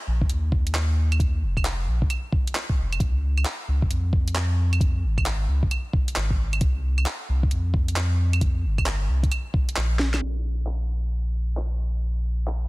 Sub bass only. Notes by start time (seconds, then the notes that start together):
0.07 A#1
0.30 D#2
1.42 F1
1.87 A#1
2.78 F1
3.00 C#2
3.68 C#2
3.90 F2
5.03 G#1
5.48 C#2
6.16 G#1
6.61 C2
7.29 C2
7.52 F2
8.64 G1
9.09 C2
9.77 A#1
10.22 A#1